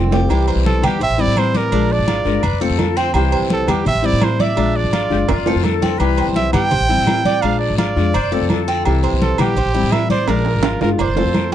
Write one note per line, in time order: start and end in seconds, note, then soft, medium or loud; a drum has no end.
0.00 0.26 F1 loud
0.00 0.11 D3 soft
0.00 0.11 A3 soft
0.00 0.10 C4 soft
0.00 0.11 C4 medium
0.11 0.29 A3 medium
0.11 0.29 C4 medium
0.11 0.29 F4 medium
0.11 0.29 G4 medium
0.11 low timbale medium
0.11 short guiro medium
0.28 0.55 C2 loud
0.28 0.82 C3 medium
0.28 0.82 E3 medium
0.28 0.82 G3 medium
0.28 0.81 E4 medium
0.28 0.48 G4 medium
0.28 high conga soft
0.28 low agogo loud
0.28 long guiro medium
0.48 0.82 C5 medium
0.48 high conga soft
0.48 low agogo medium
0.56 0.82 B1 loud
0.66 0.82 A4 medium
0.66 high conga medium
0.66 short guiro medium
0.82 1.00 E2 medium
0.82 0.99 E3 medium
0.82 0.99 G3 medium
0.82 1.00 B3 medium
0.82 1.00 E4 medium
0.82 1.01 G4 medium
0.82 high conga soft
0.82 low conga medium
0.82 low agogo loud
0.82 short guiro medium
1.00 1.09 A1 loud
1.00 1.18 C5 medium
1.00 1.22 E5 loud
1.00 muted nylon-string guitar stroke medium
1.00 high conga soft
1.00 low agogo medium
1.00 long guiro medium
1.10 1.27 A1 medium
1.18 1.35 G3 medium
1.18 1.36 C4 medium
1.18 1.35 E4 medium
1.18 1.53 E4 medium
1.18 1.40 D5 loud
1.18 high conga soft
1.27 1.70 A2 medium
1.36 1.71 E3 soft
1.36 1.72 G3 soft
1.36 1.72 C4 medium
1.36 1.72 E4 soft
1.36 1.58 C5 medium
1.36 high conga medium
1.36 low agogo loud
1.36 short guiro medium
1.54 1.94 A#4 medium
1.54 1.72 D5 medium
1.54 high conga medium
1.54 short guiro medium
1.72 1.98 A#1 loud
1.72 2.25 F3 medium
1.72 2.25 G#3 medium
1.72 2.07 D4 medium
1.72 2.25 D4 medium
1.72 2.24 F4 medium
1.72 high conga soft
1.72 low agogo medium
1.72 long guiro medium
1.90 2.63 D5 medium
1.90 high conga soft
1.99 2.24 G#1 loud
2.08 2.42 F4 medium
2.08 high conga medium
2.08 low agogo medium
2.08 short guiro medium
2.24 2.42 G1 medium
2.24 2.43 G#3 soft
2.24 2.43 D4 medium
2.24 2.43 F4 medium
2.24 2.44 A#4 medium
2.24 high conga soft
2.24 short guiro medium
2.43 2.52 F1 loud
2.43 2.62 B4 medium
2.43 2.61 D5 medium
2.43 muted nylon-string guitar stroke medium
2.43 high conga soft
2.43 low agogo loud
2.43 long guiro medium
2.53 2.70 F1 medium
2.61 2.78 A3 soft
2.61 2.78 C4 medium
2.61 2.78 F4 medium
2.61 2.98 A4 loud
2.61 2.96 A4 medium
2.61 high conga soft
2.70 3.13 F2 medium
2.78 3.14 D3 medium
2.78 3.14 A3 soft
2.78 3.14 C4 medium
2.78 3.14 F4 medium
2.78 high conga medium
2.78 low timbale medium
2.78 low agogo medium
2.78 short guiro medium
2.97 3.14 C4 loud
2.97 3.14 C5 loud
2.97 short guiro medium
3.14 3.40 C2 loud
3.14 3.67 C3 medium
3.14 3.67 E3 medium
3.14 3.67 G3 medium
3.14 3.66 E4 medium
3.14 3.32 G4 medium
3.14 3.40 C5 loud
3.14 high conga soft
3.14 low agogo loud
3.14 long guiro medium
3.32 3.67 C5 medium
3.32 high conga soft
3.32 low agogo medium
3.41 3.67 B1 medium
3.50 3.72 A4 loud
3.50 high conga loud
3.50 short guiro medium
3.67 3.85 E2 medium
3.67 3.84 E3 medium
3.67 3.84 G3 medium
3.67 3.85 B3 medium
3.67 3.85 E4 medium
3.67 3.86 G4 medium
3.67 3.87 G4 medium
3.67 high conga soft
3.67 low conga medium
3.67 low agogo loud
3.67 short guiro medium
3.85 3.94 A1 loud
3.85 4.03 C5 medium
3.85 4.07 E5 loud
3.85 muted nylon-string guitar stroke medium
3.85 high conga soft
3.85 low conga medium
3.85 low agogo medium
3.85 long guiro medium
3.95 4.12 A1 medium
4.02 4.20 G3 medium
4.02 4.20 C4 medium
4.02 4.20 E4 medium
4.02 4.39 E4 medium
4.02 4.25 D5 loud
4.02 high conga soft
4.13 4.55 A2 loud
4.20 4.55 E3 soft
4.20 4.56 G3 soft
4.20 4.56 C4 medium
4.20 4.57 E4 medium
4.20 4.42 C5 loud
4.20 high conga medium
4.20 low timbale medium
4.20 low agogo loud
4.20 short guiro medium
4.39 4.57 D5 medium
4.39 4.77 E5 loud
4.39 high conga medium
4.39 short guiro medium
4.55 4.83 A#1 medium
4.55 5.09 F3 medium
4.55 5.10 G#3 medium
4.55 5.10 D4 medium
4.55 4.92 D4 medium
4.55 5.09 F4 medium
4.55 low agogo medium
4.55 long guiro medium
4.76 5.47 D5 medium
4.76 high conga soft
4.84 5.10 G#1 loud
4.93 5.28 F4 medium
4.93 high conga medium
4.93 low agogo medium
4.93 short guiro medium
5.10 5.28 F#1 medium
5.10 5.28 G#3 soft
5.10 5.28 D4 medium
5.10 5.27 F4 medium
5.10 5.16 G4 medium
5.10 high conga soft
5.10 short guiro medium
5.28 5.37 F1 loud
5.28 5.66 F4 medium
5.28 5.46 D5 medium
5.28 muted nylon-string guitar stroke medium
5.28 high conga soft
5.28 high timbale loud
5.28 low agogo loud
5.28 long guiro medium
5.38 5.55 F1 medium
5.46 5.63 A3 medium
5.46 5.64 C4 medium
5.46 5.63 F4 medium
5.46 5.82 A4 medium
5.46 high conga soft
5.46 low timbale loud
5.55 5.98 F2 loud
5.63 5.99 D3 soft
5.63 5.99 A3 medium
5.63 6.00 C4 soft
5.63 6.00 F4 soft
5.63 6.00 A4 medium
5.63 high conga medium
5.63 low timbale medium
5.63 low agogo medium
5.63 short guiro medium
5.82 6.00 C4 loud
5.82 high conga medium
5.82 low timbale medium
5.82 short guiro medium
5.98 6.26 C2 loud
5.98 6.53 C3 medium
5.98 6.53 E3 medium
5.98 6.53 G3 medium
5.98 6.51 E4 medium
5.98 6.17 G4 medium
5.98 6.26 B4 loud
5.98 high conga soft
5.98 low agogo medium
5.98 long guiro medium
6.17 6.53 C5 medium
6.17 high conga soft
6.17 low agogo medium
6.27 6.52 B1 loud
6.36 6.53 E5 loud
6.36 high conga medium
6.36 short guiro medium
6.53 6.71 G2 medium
6.53 6.71 E3 medium
6.53 6.70 G3 medium
6.53 6.71 B3 medium
6.53 6.70 E4 medium
6.53 6.71 G4 medium
6.53 7.43 G5 loud
6.53 high conga soft
6.53 low conga medium
6.53 low agogo loud
6.53 short guiro medium
6.71 6.80 A1 loud
6.71 6.89 C5 medium
6.71 muted nylon-string guitar stroke medium
6.71 high conga soft
6.71 low conga medium
6.71 low agogo medium
6.71 long guiro medium
6.80 6.97 A1 medium
6.89 7.06 G3 medium
6.89 7.06 C4 medium
6.89 7.06 E4 medium
6.89 7.24 E4 medium
6.89 high conga soft
6.98 7.40 A2 medium
7.06 7.42 E3 soft
7.06 7.42 G3 soft
7.06 7.42 C4 soft
7.06 7.43 E4 medium
7.06 high conga medium
7.06 low timbale medium
7.06 low agogo loud
7.06 short guiro medium
7.25 7.43 D5 medium
7.25 high conga medium
7.25 short guiro medium
7.42 7.69 A#1 loud
7.42 7.96 F3 medium
7.42 7.96 G#3 medium
7.42 7.77 D4 medium
7.42 7.96 D4 medium
7.42 7.95 F4 medium
7.42 7.59 F5 loud
7.42 high conga soft
7.42 low agogo loud
7.42 long guiro medium
7.60 7.77 D5 medium
7.60 high conga soft
7.70 7.95 G#1 loud
7.78 8.13 F4 medium
7.78 8.63 D5 medium
7.78 high conga medium
7.78 low agogo medium
7.78 short guiro medium
7.96 8.13 F2 medium
7.96 8.15 G#3 medium
7.96 8.14 D4 medium
7.96 8.14 F4 medium
7.96 high conga soft
7.96 short guiro medium
8.13 8.23 F1 loud
8.13 8.35 C5 loud
8.13 8.32 D5 medium
8.13 muted nylon-string guitar stroke medium
8.13 high conga soft
8.13 low agogo loud
8.13 long guiro medium
8.24 8.40 F1 medium
8.32 8.50 A3 medium
8.32 8.50 C4 medium
8.32 8.49 F4 medium
8.32 8.67 A4 medium
8.32 8.50 A4 medium
8.32 high conga soft
8.41 8.83 F2 loud
8.50 8.85 D3 medium
8.50 8.85 A3 medium
8.50 8.86 C4 soft
8.50 8.86 F4 medium
8.50 9.09 A4 medium
8.50 high conga medium
8.50 low timbale medium
8.50 low agogo medium
8.50 short guiro medium
8.68 8.85 C4 loud
8.68 short guiro medium
8.85 9.11 C2 loud
8.85 9.38 C3 medium
8.85 9.38 E3 medium
8.85 9.38 G3 medium
8.85 9.37 E4 medium
8.85 9.03 G4 medium
8.85 high conga soft
8.85 low agogo medium
8.85 long guiro medium
9.03 9.38 C5 medium
9.03 high conga soft
9.03 low agogo medium
9.12 9.38 B1 loud
9.21 9.41 A4 medium
9.21 high conga loud
9.21 short guiro medium
9.38 9.56 A#1 medium
9.38 9.56 E3 medium
9.38 9.56 G3 medium
9.38 9.56 B3 medium
9.38 9.56 E4 medium
9.38 9.56 G4 medium
9.38 9.94 G4 loud
9.38 high conga soft
9.38 low conga medium
9.38 low agogo loud
9.38 short guiro medium
9.56 9.65 A1 loud
9.56 9.74 C5 medium
9.56 muted nylon-string guitar stroke medium
9.56 high conga soft
9.56 low agogo medium
9.56 long guiro medium
9.66 9.83 A1 medium
9.74 9.91 G3 medium
9.74 9.91 C4 medium
9.74 9.91 E4 medium
9.74 10.09 E4 medium
9.74 high conga soft
9.83 10.26 A2 loud
9.91 10.26 E3 soft
9.91 10.27 G3 medium
9.91 10.28 E4 medium
9.91 10.10 E5 loud
9.91 high conga medium
9.91 low timbale medium
9.91 low agogo loud
9.91 short guiro medium
10.10 10.30 C5 loud
10.10 10.27 D5 medium
10.10 high conga medium
10.10 short guiro medium
10.27 10.53 A#1 loud
10.27 10.80 F3 medium
10.27 10.80 G#3 medium
10.27 10.81 D4 medium
10.27 10.63 D4 medium
10.27 10.80 F4 medium
10.27 10.81 A#4 loud
10.27 high conga soft
10.27 high timbale medium
10.27 low agogo loud
10.27 long guiro medium
10.45 high conga soft
10.45 high timbale medium
10.55 10.80 G#1 loud
10.63 10.98 F4 medium
10.63 high conga medium
10.63 high timbale loud
10.63 low agogo medium
10.63 short guiro medium
10.81 10.98 G1 medium
10.81 10.99 G#3 medium
10.81 10.99 D4 medium
10.81 10.98 F4 medium
10.81 10.90 A#4 medium
10.81 high conga soft
10.81 low timbale loud
10.81 short guiro medium
10.98 11.07 F1 loud
10.98 11.49 C5 medium
10.98 11.17 D5 medium
10.98 muted nylon-string guitar stroke medium
10.98 high conga soft
10.98 low timbale medium
10.98 low agogo loud
10.98 long guiro medium
11.08 11.25 F1 medium
11.16 11.34 A3 medium
11.16 11.34 C4 medium
11.16 11.33 F4 medium
11.16 11.51 A4 medium
11.16 high conga soft
11.16 low timbale medium
11.25 11.55 F2 loud
11.34 11.55 D3 soft
11.34 11.55 A3 soft
11.34 high conga medium
11.34 low timbale medium
11.34 low agogo medium
11.34 short guiro medium